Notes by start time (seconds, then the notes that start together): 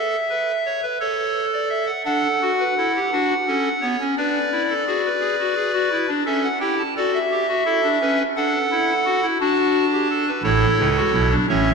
Already playing: A4 E5
0.30 B4
0.66 C#5
0.83 B4
1.00 A4 C#5
1.53 D5
1.70 E5
1.87 F#5
2.05 D4 A4 F#5
2.42 F#4
2.59 B4
2.77 E4 A4
2.96 G4
3.12 D4 F#4
3.47 C#4 A4
3.81 B3 C#5
4.00 C#4
4.17 D4 B4 D5
4.52 E4
4.70 A4
4.87 F#4 G#4
5.05 B4
5.21 G#4
5.40 F#4
5.57 G#4
5.74 F#4
5.91 E4
6.08 D4
6.26 C#4 A4 E5
6.44 F#5
6.60 E4 G4 G5
6.78 A5
6.97 F#4 A4 D5
7.14 E5
7.31 G4
7.48 F#4
7.65 E4 A4
7.83 D4
8.01 C#4 B4
8.37 D4 A4 F#5
8.71 E4
9.05 F#4
9.22 E4
9.40 D4 F#4 A5
9.93 G4
10.11 A4
10.27 B4
10.43 A1 A2 E4 A4 C#5
10.79 C#2 C#3
10.97 F#4
11.13 B1 B2 E4
11.30 D4
11.48 A1 A2 C#4 C#5 E5